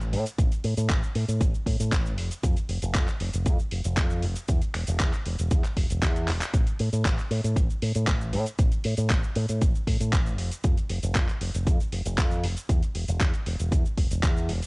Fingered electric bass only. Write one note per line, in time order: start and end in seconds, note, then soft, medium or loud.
0.00 0.14 A1 medium
0.13 0.24 A2 loud
0.38 0.49 A1 loud
0.64 0.75 A2 medium
0.77 0.91 A2 loud
0.90 1.00 A1 medium
1.15 1.26 A2 medium
1.28 1.42 A2 medium
1.41 1.52 A1 medium
1.66 1.77 A2 medium
1.80 1.93 A2 loud
1.92 2.18 A1 medium
2.18 2.29 F1 loud
2.43 2.54 F2 loud
2.69 2.80 F1 medium
2.82 2.96 F1 loud
2.95 3.06 F2 medium
3.20 3.31 F1 medium
3.34 3.47 F1 medium
3.46 3.57 F2 medium
3.72 3.83 F1 medium
3.85 3.99 F1 loud
3.97 4.25 F2 loud
4.23 4.34 F1 loud
4.49 4.59 E2 loud
4.74 4.85 E1 medium
4.88 5.01 E1 loud
5.00 5.11 E2 medium
5.26 5.37 E1 medium
5.39 5.53 E1 medium
5.51 5.62 E2 medium
5.77 5.88 E1 medium
5.90 6.04 E1 loud
6.02 6.30 E2 medium
6.28 6.39 E1 loud
6.54 6.65 A1 loud
6.80 6.90 A2 medium
6.93 7.06 A2 loud
7.05 7.16 A1 medium
7.31 7.41 A2 medium
7.44 7.58 A2 medium
7.56 7.67 A1 medium
7.82 7.93 A2 medium
7.95 8.09 A2 loud
8.08 8.35 A1 medium
8.33 8.44 A2 loud
8.59 8.70 A1 loud
8.85 8.96 A2 medium
8.98 9.12 A2 loud
9.10 9.21 A1 medium
9.36 9.47 A2 medium
9.49 9.63 A2 medium
9.62 9.72 A1 medium
9.87 9.98 A2 medium
10.00 10.14 A2 loud
10.13 10.38 A1 medium
10.38 10.49 F1 loud
10.64 10.75 F2 loud
10.90 11.01 F1 medium
11.03 11.17 F1 loud
11.15 11.26 F2 medium
11.41 11.52 F1 medium
11.54 11.68 F1 medium
11.67 11.78 F2 medium
11.92 12.03 F1 medium
12.05 12.20 F1 loud
12.18 12.45 F2 medium
12.44 12.54 F1 loud
12.69 12.80 E2 loud
12.95 13.06 E1 medium
13.08 13.22 E1 loud
13.21 13.31 E2 medium
13.46 13.57 E1 medium
13.60 13.73 E1 medium
13.72 13.83 E2 medium
13.98 14.08 E1 medium
14.11 14.25 E1 loud
14.23 14.50 E2 medium
14.49 14.60 E1 loud